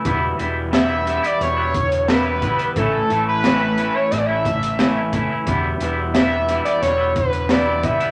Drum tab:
HH |x-x-x-xxx-xxx-xx|x-x-x-x-x-xxx-x-|x-x-x-xxx-xxx-xx|
SD |----o-------o---|----o---o---o---|----o---o---o---|
BD |o---------o---o-|o---------o---o-|o---------o---o-|